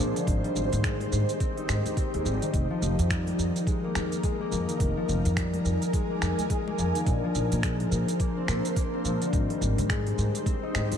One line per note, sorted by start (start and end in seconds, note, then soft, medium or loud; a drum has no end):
0.00 0.10 A#2 medium
0.00 0.15 D3 medium
0.00 0.18 F3 medium
0.00 0.18 G#3 medium
0.00 0.25 A#3 medium
0.00 2.93 A#3 loud
0.00 10.98 A#3 medium
0.00 1.40 C4 loud
0.00 0.25 D4 medium
0.00 0.25 G#4 medium
0.00 10.98 A#4 medium
0.00 2.50 C5 medium
0.16 0.32 D3 medium
0.16 open hi-hat soft
0.16 shaker soft
0.27 0.39 G#1 loud
0.27 2.41 D#3 medium
0.27 7.03 D#4 medium
0.27 4.76 G4 medium
0.27 kick loud
0.27 open hi-hat medium
0.27 shaker soft
0.44 2.24 G3 loud
0.44 open hi-hat soft
0.56 0.67 G#1 medium
0.56 shaker medium
0.72 1.06 G#2 medium
0.72 open hi-hat soft
0.72 low conga medium
0.72 shaker soft
0.84 2.13 G#3 loud
0.84 finger snap medium
0.84 kick loud
0.84 open hi-hat medium
0.84 shaker soft
1.00 open hi-hat soft
1.00 muted conga soft
1.12 1.24 G#2 loud
1.12 shaker medium
1.29 open hi-hat soft
1.29 shaker soft
1.40 1.97 C4 loud
1.40 kick loud
1.40 open hi-hat medium
1.40 shaker soft
1.57 4.27 D#4 medium
1.57 open hi-hat soft
1.69 1.80 G#2 medium
1.69 finger snap medium
1.69 shaker medium
1.86 open hi-hat soft
1.86 high conga medium
1.86 shaker soft
1.97 4.97 C4 loud
1.97 kick loud
1.97 open hi-hat medium
1.97 shaker soft
2.14 2.22 D#2 medium
2.14 2.45 G#3 medium
2.14 open hi-hat soft
2.14 muted conga soft
2.25 2.37 G#1 medium
2.25 2.45 G3 medium
2.25 shaker medium
2.42 2.52 D#3 medium
2.42 open hi-hat soft
2.42 shaker soft
2.54 2.65 F1 loud
2.54 4.68 D#3 medium
2.54 9.29 A#4 medium
2.54 kick loud
2.54 open hi-hat medium
2.54 shaker soft
2.70 4.51 F3 loud
2.82 2.93 F1 medium
2.82 shaker medium
2.99 3.33 F2 medium
2.99 open hi-hat soft
2.99 shaker soft
3.10 4.71 G3 loud
3.10 finger snap medium
3.10 kick loud
3.10 open hi-hat medium
3.10 shaker soft
3.27 open hi-hat soft
3.27 muted conga soft
3.38 3.50 F2 medium
3.38 shaker medium
3.56 open hi-hat soft
3.56 shaker soft
3.67 4.23 G#3 loud
3.67 kick loud
3.67 open hi-hat soft
3.67 shaker soft
3.84 4.40 A#3 medium
3.95 4.07 F2 medium
3.95 finger snap medium
3.95 muted conga medium
3.95 shaker medium
4.12 open hi-hat soft
4.12 shaker soft
4.23 4.71 G#3 loud
4.23 kick loud
4.23 open hi-hat medium
4.23 shaker soft
4.41 6.10 A#3 loud
4.52 4.63 F2 medium
4.52 4.71 F3 medium
4.52 high conga soft
4.52 shaker medium
4.69 4.79 D#3 medium
4.69 open hi-hat soft
4.69 shaker soft
4.80 4.91 F1 loud
4.80 6.94 D#3 medium
4.80 7.05 G#5 medium
4.80 kick loud
4.80 open hi-hat medium
4.80 shaker soft
4.97 6.78 F3 loud
5.09 5.20 F1 loud
5.09 shaker medium
5.25 5.59 F2 loud
5.25 open hi-hat soft
5.25 low conga medium
5.25 shaker soft
5.37 6.97 G3 loud
5.37 finger snap medium
5.37 kick loud
5.37 open hi-hat medium
5.37 shaker soft
5.54 open hi-hat soft
5.54 muted conga medium
5.65 5.76 F2 medium
5.65 shaker medium
5.82 open hi-hat soft
5.82 shaker soft
5.93 6.49 G#3 loud
5.93 kick loud
5.93 open hi-hat medium
5.93 shaker soft
6.10 6.67 A#3 medium
6.22 6.33 F2 medium
6.22 finger snap medium
6.22 shaker medium
6.39 open hi-hat soft
6.39 high conga medium
6.39 shaker soft
6.50 6.97 G#3 loud
6.50 kick loud
6.50 open hi-hat medium
6.50 shaker soft
6.67 8.20 A#3 loud
6.67 muted conga soft
6.78 6.90 F2 medium
6.78 6.97 F3 medium
6.78 shaker medium
6.95 7.12 D#3 medium
6.95 open hi-hat soft
6.95 shaker soft
7.06 7.18 A#1 loud
7.06 9.20 D3 medium
7.06 9.31 D4 medium
7.06 9.31 C5 medium
7.06 kick loud
7.06 open hi-hat medium
7.06 shaker soft
7.24 9.04 F3 loud
7.35 7.46 A#1 medium
7.35 shaker medium
7.52 7.86 A#2 medium
7.52 open hi-hat soft
7.52 shaker soft
7.63 9.24 G#3 loud
7.63 finger snap medium
7.63 kick loud
7.63 open hi-hat medium
7.63 shaker soft
7.80 open hi-hat soft
7.80 muted conga soft
7.91 8.03 A#2 medium
7.91 shaker medium
8.08 open hi-hat soft
8.08 shaker soft
8.20 8.76 A#3 loud
8.20 kick loud
8.20 open hi-hat medium
8.20 shaker soft
8.37 8.93 C4 loud
8.48 8.59 A#2 medium
8.48 finger snap medium
8.48 muted conga medium
8.48 shaker medium
8.65 open hi-hat soft
8.65 shaker soft
8.76 10.98 A#3 loud
8.76 kick loud
8.76 open hi-hat medium
8.76 shaker soft
8.93 10.46 C4 loud
9.05 9.16 A#2 medium
9.05 9.24 F3 medium
9.05 high conga soft
9.05 shaker medium
9.22 9.38 D3 medium
9.22 open hi-hat soft
9.22 shaker soft
9.33 9.44 G#1 loud
9.33 10.98 D#3 medium
9.33 10.98 D#4 medium
9.33 10.98 G4 medium
9.33 10.98 C5 loud
9.33 kick loud
9.33 open hi-hat medium
9.33 shaker soft
9.50 10.98 G3 loud
9.50 open hi-hat soft
9.61 9.73 G#1 loud
9.61 shaker medium
9.78 10.12 G#2 medium
9.78 open hi-hat soft
9.78 low conga medium
9.78 shaker soft
9.89 10.98 G#3 loud
9.89 finger snap medium
9.89 kick loud
9.89 open hi-hat medium
9.89 shaker soft
10.07 open hi-hat soft
10.07 muted conga medium
10.07 high conga soft
10.18 10.29 G#2 medium
10.18 shaker medium
10.35 open hi-hat soft
10.35 shaker soft
10.46 10.98 C4 loud
10.46 kick loud
10.46 open hi-hat medium
10.46 high conga medium
10.46 shaker soft
10.63 10.98 D#4 loud
10.74 10.98 G#2 medium
10.74 finger snap medium
10.74 high conga soft
10.74 shaker medium
10.92 open hi-hat soft
10.92 high conga medium
10.92 shaker soft